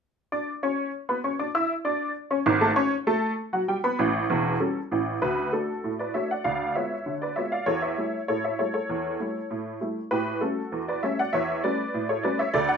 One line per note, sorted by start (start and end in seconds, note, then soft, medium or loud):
0.32 0.49 D4 medium
0.32 0.49 D5 medium
0.32 0.49 D6 medium
0.63 0.88 C#4 medium
0.63 0.88 C#5 medium
0.63 0.88 C#6 medium
1.09 1.17 B3 medium
1.09 1.18 B4 medium
1.09 1.17 B5 medium
1.24 1.33 C#4 medium
1.24 1.33 C#5 medium
1.24 1.33 C#6 medium
1.39 1.48 D4 medium
1.39 1.48 D5 medium
1.39 1.48 D6 medium
1.55 1.72 E4 medium
1.55 1.71 E5 medium
1.55 1.72 E6 medium
1.85 2.10 D4 medium
1.85 2.10 D5 medium
1.85 2.10 D6 medium
2.31 2.39 C#4 medium
2.31 2.39 C#5 medium
2.31 2.39 C#6 medium
2.46 2.70 G#1 loud
2.46 2.70 G#2 medium
2.61 2.69 A3 medium
2.61 2.70 A4 medium
2.61 2.70 A5 medium
2.76 2.93 C#4 medium
2.76 2.93 C#5 medium
2.76 2.93 C#6 medium
3.07 3.32 A3 medium
3.07 3.32 A4 medium
3.07 3.32 A5 medium
3.53 3.61 F#3 medium
3.53 3.61 F#4 medium
3.53 3.61 F#5 medium
3.68 3.77 G3 medium
3.68 3.77 G4 medium
3.68 3.77 G5 medium
3.84 4.01 B3 medium
3.84 4.01 B4 medium
3.84 4.01 B5 medium
3.99 4.23 A1 loud
3.99 4.23 A2 medium
4.30 4.54 E1 loud
4.30 4.54 E2 loud
4.60 4.77 G3 medium
4.60 4.77 C#4 medium
4.60 4.77 A4 medium
4.91 5.16 A1 medium
4.91 5.16 A2 medium
5.22 5.48 D2 medium
5.22 5.51 F#4 medium
5.22 5.51 B4 medium
5.53 5.70 A3 soft
5.53 5.70 D4 soft
5.53 5.96 F#4 soft
5.53 5.89 A4 medium
5.84 6.10 A2 medium
5.99 6.14 B4 medium
5.99 6.14 D5 medium
6.14 6.31 A3 soft
6.14 6.31 D4 soft
6.14 6.32 F#4 soft
6.14 6.29 C#5 medium
6.14 6.29 E5 medium
6.31 6.44 D5 medium
6.31 6.45 F#5 medium
6.44 6.71 D2 medium
6.44 6.74 D5 medium
6.44 6.74 F5 medium
6.75 6.93 G#3 soft
6.75 6.93 B3 soft
6.75 6.93 F4 soft
6.75 7.19 C#5 medium
6.75 7.12 E5 medium
7.06 7.32 D3 medium
7.22 7.36 B4 medium
7.22 7.37 D5 medium
7.36 7.53 G#3 soft
7.36 7.54 B3 soft
7.36 7.54 F4 soft
7.36 7.51 C#5 medium
7.36 7.52 E5 medium
7.52 7.67 D5 medium
7.52 7.67 F5 medium
7.66 7.93 E2 medium
7.66 7.82 A4 medium
7.66 7.82 C#5 medium
7.82 8.25 C#5 medium
7.82 8.19 E5 medium
7.98 8.15 G3 soft
7.98 8.15 A3 soft
7.98 8.15 E4 soft
8.28 8.54 A2 medium
8.28 8.43 A4 medium
8.28 8.44 C#5 medium
8.44 8.58 C#5 medium
8.44 8.59 E5 medium
8.59 8.76 G3 soft
8.59 8.76 A3 soft
8.59 8.76 E4 soft
8.59 8.73 A4 medium
8.59 8.72 C#5 medium
8.74 9.77 A4 medium
8.74 9.77 C#5 medium
8.89 9.15 E2 medium
9.20 9.37 G3 soft
9.20 9.37 A3 soft
9.20 9.37 E4 medium
9.51 9.76 A2 medium
9.81 9.97 G3 soft
9.81 9.98 A3 soft
9.81 9.98 E4 soft
10.11 10.37 A2 medium
10.11 10.40 G4 medium
10.11 10.40 B4 medium
10.41 10.58 G3 soft
10.41 10.59 A3 medium
10.41 10.59 C#4 soft
10.41 10.85 F#4 soft
10.41 10.78 A4 medium
10.72 10.98 E2 medium
10.88 11.02 B4 medium
10.88 11.03 D5 medium
11.03 11.20 G3 soft
11.03 11.20 A3 soft
11.03 11.20 C#4 soft
11.03 11.18 C#5 medium
11.03 11.18 E5 medium
11.19 11.33 D5 medium
11.19 11.34 F#5 medium
11.33 11.59 E2 medium
11.33 11.62 C#5 medium
11.33 11.62 E5 medium
11.64 11.80 G3 medium
11.64 11.81 A3 soft
11.64 11.81 C#4 soft
11.64 12.06 B4 medium
11.64 12.07 D5 medium
11.94 12.20 A2 medium
12.09 12.24 A4 soft
12.09 12.24 C#5 medium
12.23 12.41 G3 soft
12.23 12.41 A3 soft
12.23 12.41 C#4 soft
12.23 12.38 B4 medium
12.23 12.39 D5 medium
12.39 12.54 C#5 medium
12.39 12.54 E5 medium
12.54 12.77 D2 medium
12.54 12.69 A4 medium
12.54 12.68 D5 loud
12.69 12.77 D5 medium
12.69 12.77 F#5 medium